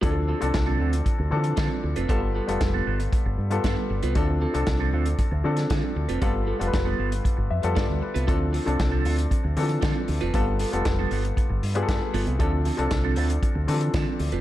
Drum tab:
HH |x--xx--xx--xx--x|x--xx--xx--xx--x|x--xx--xx--xx--x|x--xx--xx--xx--x|
SD |----o-------o---|----o-------o---|----o------oo---|----o-------o---|
BD |o---o---o---o---|o---o---o---o---|o---o---o---o---|o---o---o---o---|

HH |x-oxx-oxx-oxx-ox|x-oxx-oxx-oxx-ox|x-oxx-oxx-oxx-ox|
SD |----o-------o---|----o-------o---|----o-------o---|
BD |o---o---o---o---|o---o---o---o---|o---o---o---o---|